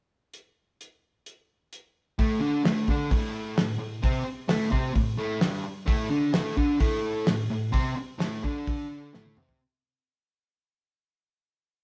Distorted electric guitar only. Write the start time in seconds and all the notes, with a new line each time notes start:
2.19 A2 A3
2.41 D3 D4
2.64 A2 A3
2.89 D3 D4
3.11 A2 A3
3.57 A2
3.79 A2
4.03 C3 C4
4.25 muted distorted electric guitar stroke
4.48 A2 A3
4.71 C3 C4
4.94 A2
5.17 A2 A3
5.41 G2 G3
5.63 muted distorted electric guitar stroke
5.86 A2 A3
6.10 D3 D4
6.33 A2 A3
6.57 D3 D4
6.79 A2 A3
7.27 A2
7.50 A2
7.72 C3 C4
7.97 muted distorted electric guitar stroke
8.19 A2 A3
8.44 D3 D4
9.14 A2 A3
9.38 C3 C4